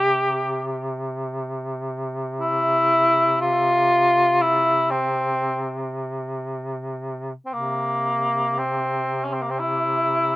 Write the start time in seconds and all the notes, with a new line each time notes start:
Already playing: C3 G4
2.40 E4
3.41 F4
4.41 E4
4.91 C4
7.46 C4
7.52 C3 A#3
8.59 C4
9.25 C#4
9.33 C4
9.42 A#3
9.50 C4
9.60 E4